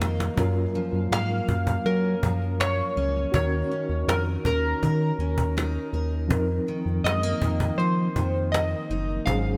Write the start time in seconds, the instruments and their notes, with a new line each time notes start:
Already playing: steel-string acoustic guitar D#3 A#3, reed electric piano F3 C4 D#4 A#4
0.00 analog synth bass F2, steel-string acoustic guitar D#4, cajon slap
0.20 cajon slap
0.35 analog synth bass F#2, steel-string acoustic guitar F#2, reed electric piano F#3 C#4 F4, cajon bass
0.40 reed electric piano A#4
0.74 steel-string acoustic guitar F3, cajon slap
0.93 analog synth bass F#2, cajon slap
1.11 analog synth bass G#2, steel-string acoustic guitar A#3, synth keys F5, cajon slap
1.31 cajon slap
1.48 analog synth bass F#2, cajon bass
1.67 cajon bass
1.86 analog synth bass F#3, steel-string acoustic guitar C#4, synth keys A#4, cajon slap
2.23 analog synth bass F#2, steel-string acoustic guitar F3, cajon bass
2.42 cajon slap
2.60 steel-string acoustic guitar A#3, synth keys C#5, cajon slap
2.79 cajon slap
2.96 analog synth bass C#2, steel-string acoustic guitar C#4, cajon slap
3.16 cajon slap
3.32 analog synth bass D#2, steel-string acoustic guitar D#3, reed electric piano C#4 D#4 F#4, synth keys C#5, cajon bass
3.36 reed electric piano A#4
3.70 steel-string acoustic guitar C#4, cajon slap
3.89 analog synth bass D#2, cajon slap
4.08 analog synth bass F2, steel-string acoustic guitar D#4, synth keys A#4, cajon slap
4.27 cajon slap
4.45 analog synth bass D#2, steel-string acoustic guitar C#4, synth keys A#4, cajon bass
4.64 cajon slap
4.82 analog synth bass D#3, steel-string acoustic guitar A#4, cajon bass, cajon slap
5.19 analog synth bass D#2, steel-string acoustic guitar C#4, cajon slap
5.38 cajon bass
5.57 steel-string acoustic guitar D#4, cajon slap
5.76 cajon slap
5.93 analog synth bass D#2, steel-string acoustic guitar A#4, cajon slap
6.12 cajon slap
6.28 analog synth bass F2, reed electric piano F3 C4 D#4, cajon bass
6.32 reed electric piano A#4
6.67 steel-string acoustic guitar D#3, cajon slap
6.86 analog synth bass F2, cajon slap
7.04 analog synth bass F#2, steel-string acoustic guitar G#3, synth keys D#5, cajon slap
7.23 steel-string acoustic guitar A#3, cajon slap
7.41 analog synth bass F2, steel-string acoustic guitar D#3, cajon bass
7.60 cajon bass
7.78 analog synth bass F3, steel-string acoustic guitar D#4, synth keys C5, cajon slap
8.16 analog synth bass F2, steel-string acoustic guitar D#3, cajon bass
8.35 cajon slap
8.52 steel-string acoustic guitar A#3, synth keys D#5, cajon slap
8.72 cajon slap
8.90 analog synth bass F#1, steel-string acoustic guitar D#4, cajon slap
9.09 cajon slap
9.25 analog synth bass G#1, steel-string acoustic guitar G#2, reed electric piano F#3 C#4 D#4, synth keys F5, cajon bass
9.30 reed electric piano G#4
9.45 cajon slap